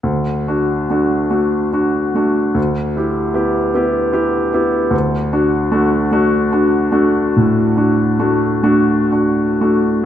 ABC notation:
X:1
M:12/8
L:1/8
Q:3/8=49
K:D
V:1 name="Grand piano"
D,, [DF] [A,DF] [A,DF] [DF] [A,DF] D,, [EG] [B,EG] [B,EG] [EG] [B,EG] | D,, [DF] [A,DF] [A,DF] [DF] [A,DF] A,, [DF] [A,DF] [A,DF] [DF] [A,DF] |]